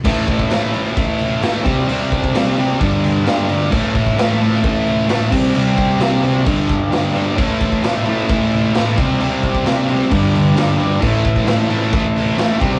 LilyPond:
<<
  \new Staff \with { instrumentName = "Transistor combo organ" } { \time 4/4 \key a \minor \tempo 4 = 131 r1 | r1 | r1 | r1 |
<e' a' c''>2.~ <e' a' c''>8 <e' g' c''>8~ | <e' g' c''>2 <d' g' b'>2 | <e' a' c''>2.~ <e' a' c''>8 <e' g' c''>8 | }
  \new Staff \with { instrumentName = "Distorted electric guitar" } { \clef bass \time 4/4 \key a \minor <a, e a>4 <a, e a>8 <e a>4. <a, e a>8 <c g c'>8 | <c g c'>4 <c g c'>8 <g c'>8 <g, d g>4 <g, d g>8 <d g>8 | <a, e a>4 <a, e a>8 <e a>4. <a, e a>8 <c g c'>8 | <c g c'>4 <c g c'>8 <g c'>8 <g, d g>4 <g, d g>8 <d g>8 |
<a, e a>4 <a, e a>8 <e a>4. <a, e a>8 <c g c'>8 | <c g c'>4 <c g c'>8 <g c'>8 <g, d g>4 <g, d g>8 <d g>8 | <a, e a>4 <a, e a>8 <e a>4. <a, e a>8 <c g c'>8 | }
  \new DrumStaff \with { instrumentName = "Drums" } \drummode { \time 4/4 <cymc bd>8 <cymc bd>16 bd16 <cymc sn>8 cymc16 sn16 <cymc bd>8 cymc8 <cymc sn>8 <cymc bd>8 | cymc8 <cymc bd>16 bd16 <cymc sn>8 cymc16 sn16 <cymc bd>8 <cymc sn>8 <cymc sn>8 cymc8 | <cymc bd>8 <cymc bd>16 bd16 <cymc sn>8 cymc16 sn16 <cymc bd>8 cymc8 <cymc sn>8 <cymc bd>8 | cymc8 <cymc bd>8 <cymc sn>8 cymc8 <cymc bd>8 <cymc bd sn>8 <cymc sn>8 cymc8 |
<cymc bd>8 <cymc bd>16 bd16 <cymc sn>8 cymc16 sn16 <cymc bd>8 cymc8 <cymc sn>8 <cymc bd>8 | cymc8 <cymc bd>16 bd16 <cymc sn>8 cymc16 sn16 <cymc bd>8 cymc8 <cymc sn>8 cymc8 | <cymc bd>8 <cymc bd>16 bd16 <cymc sn>8 cymc16 sn16 <cymc bd>8 cymc8 <cymc sn>8 <cymc bd>8 | }
>>